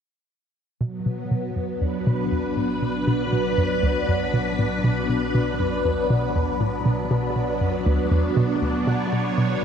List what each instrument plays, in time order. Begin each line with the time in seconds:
0.81 analog synth bass B1, synth arpeggio sound B2, string machine F#3
0.90 string machine B3
1.06 synth arpeggio sound B2
1.31 synth arpeggio sound B2
1.56 synth arpeggio sound F#2
1.71 string machine D4
1.78 synth arpeggio sound E2, string machine B4
2.07 synth arpeggio sound B2
2.32 synth arpeggio sound E2
2.57 synth arpeggio sound A2
2.82 synth arpeggio sound B2
3.07 synth arpeggio sound B2
3.33 synth arpeggio sound B2
3.58 synth arpeggio sound F#2
3.83 synth arpeggio sound D2
4.08 synth arpeggio sound F#2
4.34 synth arpeggio sound B2
4.59 synth arpeggio sound A2
4.84 synth arpeggio sound B2
5.09 synth arpeggio sound B2
5.35 synth arpeggio sound B2
5.60 synth arpeggio sound F#2
5.85 synth arpeggio sound E2
6.10 synth arpeggio sound B2
6.36 synth arpeggio sound E2
6.61 synth arpeggio sound A2
6.86 synth arpeggio sound B2
7.11 synth arpeggio sound B2
7.36 synth arpeggio sound B2
7.61 synth arpeggio sound F#2
7.86 synth arpeggio sound D2
8.11 synth arpeggio sound E2
8.37 synth arpeggio sound B2
8.62 synth arpeggio sound D2
8.79 string machine C#5
8.87 analog synth bass B1, synth arpeggio sound B2
9.13 synth arpeggio sound B2
9.38 synth arpeggio sound B2